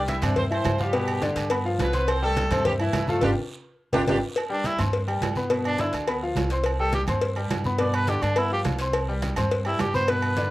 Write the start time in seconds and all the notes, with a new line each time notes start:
Already playing: C2 G3 G4 G5
0.07 E4 E5, cowbell, high conga, low timbale, low agogo, short guiro
0.22 G2 C3 C4 D4 C5 D5, cowbell, high conga, low conga, low agogo, short guiro
0.36 C4 C5, cowbell, high conga, low conga, long guiro
0.50 E3 C4 E4 C5 E5, low agogo
0.64 G2, cowbell, high conga, low timbale, low agogo, short guiro
0.78 F3 G3 F4 G4 F5, high conga, short guiro
0.93 B2 B3 B4, cowbell, low agogo, long guiro
1.08 high conga, low agogo
1.21 D3 D4 D5, cowbell, high conga, low timbale, short guiro
1.36 G2, cowbell, high conga, low agogo, short guiro
1.50 B3 B4 B5, cowbell, high conga, low agogo, long guiro
1.64 F3 F4 F5, high conga
1.79 C2 B3 B4, cowbell, high conga, low timbale, low agogo, short guiro
1.93 C4 C5 C6, cowbell, high conga, short guiro
2.07 C4 C5, cowbell, high conga, low agogo, long guiro
2.22 G3 A3 G4 A4 G5, high conga
2.36 cowbell, high conga, low timbale, low agogo, short guiro
2.51 G2 C3 C4 C5, cowbell, high conga, low conga, low agogo, short guiro
2.65 G3 G4, cowbell, high conga, low conga, long guiro
2.79 E3 E4 E5, high conga, low agogo
2.93 G2, cowbell, high conga, low timbale, low agogo, short guiro
3.07 F3 A3 F4 A4 F5, high conga, short guiro
3.21 G1 D4 F4 G4, cowbell, high conga, high timbale, long guiro
3.93 G1 D4 F4 G4, cowbell, high conga, high timbale, long guiro
4.07 G1 D4 F4 G4, cowbell, high conga, high timbale, long guiro
4.36 cowbell, high conga, low agogo, long guiro
4.49 G3 D4 G4 G5, high conga
4.64 E4, cowbell, high conga, low timbale, low agogo, short guiro
4.78 G2 C4 C5 C6, cowbell, high conga, low conga, low agogo, short guiro
4.93 cowbell, high conga, long guiro
5.07 G3 G4 G5, high conga, low agogo
5.21 G2, cowbell, high conga, low timbale, low agogo, short guiro
5.35 B3 B4 B5, high conga, short guiro
5.50 B2 B3 B4, cowbell, high conga, low agogo, long guiro
5.64 D4, high conga, low agogo
5.78 D3 D4 E4 D5, cowbell, high conga, low timbale, short guiro
5.93 D2, cowbell, high conga, low agogo, short guiro
6.07 B3 B4 B5, cowbell, high conga, low agogo, long guiro
6.21 F3 F4 F5, high conga
6.36 C2, cowbell, high conga, low timbale, low agogo, short guiro
6.50 C4 C5 C6, cowbell, short guiro
6.63 cowbell, high conga, low agogo, long guiro
6.78 G3 G4 A4 G5, high conga
6.92 G4, cowbell, high conga, low timbale, low agogo, short guiro
7.07 G2 C4 C5 C6, cowbell, high conga, low conga, low agogo, short guiro
7.21 cowbell, high conga, long guiro
7.36 G3 G4 G5, high conga, low agogo
7.50 G2, cowbell, high conga, low timbale, low agogo, short guiro
7.64 B3 B4 B5, high conga, short guiro
7.78 B2 B3 B4 D5, cowbell, high conga, low agogo, long guiro
7.93 B4, high conga, low agogo
8.07 D3 D4 G4 D5, cowbell, high conga, low timbale, short guiro
8.22 G2 D4, cowbell, high conga, low agogo, short guiro
8.36 B3 E4 B4 B5, cowbell, high conga, low agogo, long guiro
8.50 F3 F4 G4 F5, high conga
8.64 C2, cowbell, high conga, low timbale, low agogo, short guiro
8.79 C4 C5 C6, cowbell, short guiro
8.93 cowbell, high conga, low agogo, long guiro
9.08 G3 G4 G5, high conga
9.22 cowbell, high conga, low timbale, low agogo, short guiro
9.36 G2 C4 C5 C6, cowbell, high conga, low conga, low agogo, short guiro
9.51 cowbell, high conga, long guiro
9.65 G3 E4 G4 G5, high conga, low agogo
9.79 G2 G4, cowbell, high conga, low timbale, low agogo, short guiro
9.94 B3 B4 C5 B5, high conga, short guiro
10.08 B2 B3 B4, cowbell, high conga, low agogo, long guiro
10.22 high conga, low agogo
10.37 D3 D4 D5, cowbell, high conga, low timbale, short guiro